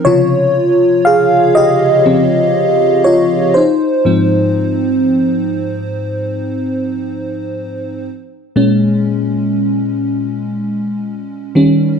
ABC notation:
X:1
M:4/4
L:1/8
Q:"Swing 16ths" 1/4=60
K:Bbdor
V:1 name="FM electric piano"
[Fd]2 [Af] [Ge]3 [Fd] [Ec]- | [Ec] z6 z | z8 |]
V:2 name="FM electric piano" clef=bass
[C,D,F,]4 [D,F,C] z3 | [A,,F,C]8 | z [B,,A,D]6 [E,G,D] |]